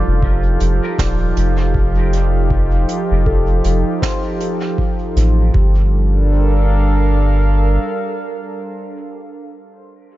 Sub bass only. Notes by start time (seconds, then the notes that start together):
0.07 F1
0.60 F1
0.99 D#1
1.36 F1
3.11 F1
3.64 F1
5.16 A1
5.54 G1